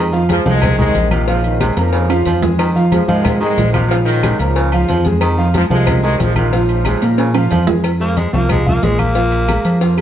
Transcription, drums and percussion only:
0.13 high conga soft
0.13 maracas medium
0.29 cowbell medium
0.29 high conga loud
0.29 low agogo loud
0.29 maracas medium
0.46 high conga loud
0.46 maracas soft
0.62 cowbell loud
0.62 high conga soft
0.62 low conga medium
0.62 low agogo loud
0.62 claves medium
0.62 maracas medium
0.79 high conga soft
0.79 low conga medium
0.79 maracas medium
0.95 cowbell medium
0.95 high conga medium
0.95 low agogo medium
0.95 maracas medium
1.11 high conga medium
1.11 low agogo loud
1.11 claves medium
1.11 maracas soft
1.28 cowbell loud
1.28 high conga soft
1.28 maracas medium
1.44 high conga soft
1.44 low agogo medium
1.61 cowbell medium
1.61 high conga loud
1.61 low agogo loud
1.61 claves medium
1.61 maracas medium
1.77 cowbell medium
1.77 high conga soft
1.77 low agogo medium
1.77 maracas soft
1.93 cowbell loud
1.93 high conga soft
1.93 maracas medium
2.10 high conga soft
2.10 high timbale medium
2.10 low agogo loud
2.10 claves medium
2.10 maracas medium
2.25 cowbell medium
2.25 high conga medium
2.25 low agogo medium
2.25 maracas medium
2.43 cowbell medium
2.43 high conga medium
2.43 low timbale medium
2.43 maracas soft
2.59 cowbell loud
2.59 high conga soft
2.59 low agogo loud
2.59 claves medium
2.59 maracas medium
2.77 high conga soft
2.77 maracas medium
2.92 cowbell medium
2.92 high conga loud
2.92 low agogo loud
2.92 maracas medium
3.09 high conga loud
3.09 maracas soft
3.25 cowbell loud
3.25 high conga soft
3.25 low conga medium
3.25 low agogo loud
3.25 claves medium
3.25 maracas medium
3.42 high conga soft
3.42 maracas medium
3.58 cowbell medium
3.58 high conga medium
3.58 low timbale medium
3.58 low agogo medium
3.58 maracas medium
3.74 high conga medium
3.74 low agogo loud
3.74 claves medium
3.74 maracas soft
3.91 cowbell loud
3.91 high conga soft
3.91 maracas medium
4.06 high conga soft
4.06 low agogo medium
4.06 maracas medium
4.23 cowbell medium
4.23 high conga loud
4.23 low agogo loud
4.23 claves medium
4.23 maracas medium
4.39 cowbell medium
4.39 high conga soft
4.39 low agogo medium
4.39 maracas soft
4.56 cowbell loud
4.56 high conga soft
4.56 maracas medium
4.72 high conga soft
4.72 low agogo loud
4.72 claves medium
4.88 cowbell medium
4.88 high conga medium
4.88 low agogo medium
4.88 maracas medium
5.05 cowbell medium
5.05 high conga medium
5.05 maracas soft
5.21 cowbell loud
5.21 high conga soft
5.21 low agogo loud
5.21 claves medium
5.21 maracas medium
5.39 high conga soft
5.54 cowbell medium
5.54 high conga loud
5.54 low agogo medium
5.54 maracas medium
5.71 high conga loud
5.71 maracas soft
5.87 cowbell loud
5.87 high conga soft
5.87 low conga medium
5.87 low agogo loud
5.87 claves medium
5.87 maracas medium
6.04 maracas medium
6.20 cowbell medium
6.20 high conga medium
6.20 low agogo medium
6.20 maracas medium
6.36 high conga medium
6.36 low agogo loud
6.36 claves medium
6.36 maracas soft
6.53 cowbell loud
6.53 maracas medium
6.69 high conga soft
6.69 low agogo medium
6.85 cowbell medium
6.85 high conga loud
6.85 low agogo loud
6.85 claves medium
6.85 maracas medium
7.02 cowbell medium
7.02 high conga soft
7.02 low agogo medium
7.02 maracas soft
7.18 cowbell loud
7.18 high conga soft
7.18 high timbale medium
7.18 maracas medium
7.35 high conga soft
7.35 high timbale medium
7.35 low agogo loud
7.35 claves medium
7.51 cowbell medium
7.51 high conga medium
7.51 low timbale medium
7.51 low agogo medium
7.51 maracas medium
7.67 cowbell medium
7.67 high conga medium
7.67 low timbale loud
7.67 maracas soft
7.84 cowbell loud
7.84 low agogo loud
7.84 claves medium
7.84 maracas medium
8.01 high conga soft
8.01 maracas medium
8.17 cowbell medium
8.17 high conga loud
8.17 low agogo medium
8.17 maracas medium
8.33 high conga medium
8.33 maracas soft
8.49 cowbell loud
8.49 high conga soft
8.49 low conga medium
8.49 low agogo loud
8.49 claves medium
8.49 maracas medium
8.67 high conga soft
8.67 low conga medium
8.82 cowbell medium
8.82 high conga medium
8.82 low timbale medium
8.82 low agogo medium
8.82 maracas medium
8.99 high conga medium
8.99 low agogo loud
8.99 claves medium
8.99 maracas soft
9.15 cowbell loud
9.15 maracas medium
9.32 high conga soft
9.32 low agogo medium
9.49 cowbell medium
9.49 high conga medium
9.49 low agogo loud
9.49 claves medium
9.49 maracas medium
9.65 cowbell medium
9.65 high conga soft
9.65 low agogo medium
9.65 maracas soft
9.81 cowbell loud
9.81 high conga soft
9.81 maracas medium
9.98 high conga soft
9.98 claves medium
9.98 maracas medium

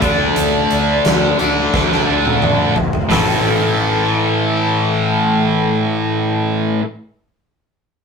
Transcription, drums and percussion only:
0.02 kick medium
0.02 closed hi-hat medium
0.36 closed hi-hat medium
0.71 closed hi-hat medium
1.05 snare loud
1.05 closed hi-hat medium
1.39 closed hi-hat soft
1.74 kick loud
1.74 snare medium
1.92 snare soft
2.26 high tom medium
2.42 mid tom medium
2.76 floor tom medium
2.93 floor tom medium
3.11 snare medium
3.11 floor tom medium
3.11 open hi-hat medium

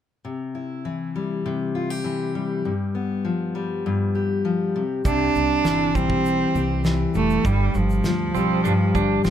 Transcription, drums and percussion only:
5.05 kick loud
5.05 shaker medium
5.35 shaker soft
5.65 snare loud
5.65 shaker medium
5.95 kick medium
5.95 shaker medium
6.10 kick medium
6.25 shaker medium
6.55 shaker medium
6.84 snare loud
6.84 shaker medium
7.14 shaker soft
7.30 shaker medium
7.45 kick loud
7.45 shaker medium
7.74 shaker soft
7.90 shaker soft
8.04 snare loud
8.04 shaker medium
8.35 shaker medium
8.65 shaker medium
8.95 kick medium
8.95 shaker medium
9.24 snare loud
9.24 shaker medium

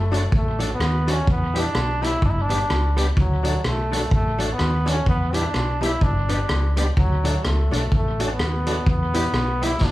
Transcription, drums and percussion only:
0.14 closed hi-hat medium
0.32 kick loud
0.60 closed hi-hat medium
0.80 cross-stick loud
1.08 closed hi-hat medium
1.27 kick loud
1.56 closed hi-hat medium
1.75 cross-stick loud
2.04 closed hi-hat medium
2.22 kick loud
2.50 closed hi-hat medium
2.70 cross-stick loud
2.97 closed hi-hat medium
3.17 kick loud
3.45 closed hi-hat medium
3.65 cross-stick loud
3.93 closed hi-hat medium
4.11 kick loud
4.40 closed hi-hat medium
4.59 cross-stick loud
4.87 closed hi-hat medium
5.06 kick loud
5.34 closed hi-hat medium
5.54 cross-stick loud
5.83 closed hi-hat medium
6.01 kick loud
6.29 closed hi-hat medium
6.49 cross-stick loud
6.77 closed hi-hat medium
6.97 kick loud
7.25 closed hi-hat medium
7.45 cross-stick loud
7.73 closed hi-hat medium
7.92 kick loud
8.20 closed hi-hat medium
8.39 cross-stick loud
8.66 closed hi-hat medium
8.86 kick loud
9.14 closed hi-hat medium
9.34 cross-stick loud
9.62 closed hi-hat medium
9.81 kick loud
9.81 snare medium

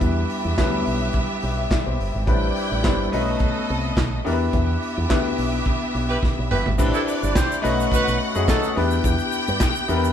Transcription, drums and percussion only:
0.01 kick medium
0.01 closed hi-hat medium
0.30 open hi-hat medium
0.58 kick loud
0.58 snare loud
0.58 clap medium
0.58 closed hi-hat medium
0.86 open hi-hat medium
1.13 kick loud
1.13 closed hi-hat medium
1.42 open hi-hat medium
1.71 kick loud
1.71 snare loud
1.71 clap medium
1.71 closed hi-hat medium
2.00 open hi-hat medium
2.27 kick loud
2.27 closed hi-hat medium
2.56 open hi-hat medium
2.84 kick loud
2.84 snare loud
2.84 clap medium
2.84 closed hi-hat medium
3.13 open hi-hat medium
3.40 kick loud
3.40 closed hi-hat medium
3.69 open hi-hat soft
3.97 kick loud
3.97 snare loud
3.97 clap loud
3.97 closed hi-hat medium
4.26 open hi-hat medium
4.53 kick loud
4.53 closed hi-hat medium
4.83 open hi-hat medium
5.10 kick loud
5.10 snare loud
5.10 clap loud
5.10 closed hi-hat medium
5.38 open hi-hat medium
5.65 kick loud
5.65 closed hi-hat medium
5.94 open hi-hat medium
6.23 kick loud
6.23 snare medium
6.51 mid tom medium
6.66 floor tom medium
6.79 kick loud
6.79 crash loud
6.79 shaker medium
6.94 shaker medium
7.08 open hi-hat medium
7.08 shaker medium
7.23 shaker medium
7.35 kick loud
7.35 snare loud
7.35 clap loud
7.35 closed hi-hat medium
7.35 shaker loud
7.52 shaker medium
7.64 open hi-hat medium
7.64 shaker soft
7.80 shaker medium
7.91 kick loud
7.91 closed hi-hat medium
7.91 shaker medium
8.08 shaker medium
8.19 open hi-hat medium
8.35 shaker medium
8.48 kick loud
8.48 snare loud
8.48 clap loud
8.48 closed hi-hat medium
8.48 shaker medium
8.63 shaker medium
8.77 open hi-hat medium
8.91 shaker medium
9.04 kick loud
9.04 closed hi-hat medium
9.04 shaker medium
9.19 shaker medium
9.32 open hi-hat medium
9.32 shaker medium
9.48 shaker medium
9.60 kick loud
9.60 snare loud
9.60 clap loud
9.60 closed hi-hat medium
9.60 shaker medium
9.76 shaker medium
9.88 open hi-hat medium
9.88 shaker soft
10.04 shaker medium

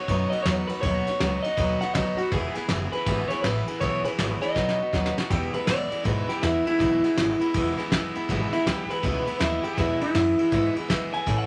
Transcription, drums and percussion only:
0.08 kick loud
0.08 ride medium
0.32 ride medium
0.45 snare loud
0.45 ride medium
0.69 ride medium
0.83 kick loud
0.83 ride medium
1.07 snare soft
1.07 ride medium
1.20 snare loud
1.20 ride medium
1.44 ride medium
1.57 kick loud
1.57 snare soft
1.57 ride medium
1.81 snare soft
1.81 ride medium
1.95 kick medium
1.95 snare loud
1.95 ride medium
2.18 ride medium
2.31 kick loud
2.31 snare soft
2.31 ride medium
2.55 snare soft
2.55 ride medium
2.69 snare loud
2.69 ride medium
2.93 ride medium
3.06 kick loud
3.06 snare soft
3.06 ride medium
3.30 snare soft
3.30 ride medium
3.44 snare loud
3.44 ride medium
3.68 ride medium
3.81 kick loud
3.81 snare soft
3.81 ride medium
4.05 ride medium
4.19 snare loud
4.19 ride medium
4.42 ride medium
4.56 kick loud
4.56 snare medium
4.69 snare medium
4.93 kick medium
4.93 snare medium
5.06 snare loud
5.18 snare medium
5.30 kick loud
5.30 snare soft
5.30 ride medium
5.54 ride medium
5.67 snare loud
5.67 ride medium
5.91 ride medium
6.05 kick loud
6.05 ride medium
6.29 snare soft
6.29 ride medium
6.43 snare loud
6.43 ride medium
6.67 ride medium
6.80 kick loud
6.80 snare soft
6.80 ride medium
7.04 snare soft
7.04 ride medium
7.17 snare loud
7.17 ride medium
7.41 ride medium
7.54 kick loud
7.54 ride medium
7.78 snare soft
7.78 ride medium
7.92 kick medium
7.92 snare loud
7.92 ride medium
8.15 ride medium
8.29 kick loud
8.29 snare soft
8.29 ride medium
8.53 snare soft
8.53 ride medium
8.67 snare loud
8.67 ride medium
8.90 ride medium
9.03 kick loud
9.03 snare soft
9.03 ride medium
9.27 ride medium
9.40 snare loud
9.40 ride medium
9.64 ride medium
9.78 kick loud
9.78 snare soft
9.78 ride medium
10.01 ride medium
10.15 snare loud
10.15 ride medium
10.39 ride medium
10.52 kick loud
10.52 snare soft
10.52 ride medium
10.76 ride medium
10.90 kick medium
10.90 snare loud
10.90 ride medium
11.14 ride medium
11.27 kick loud
11.27 snare soft
11.27 ride medium

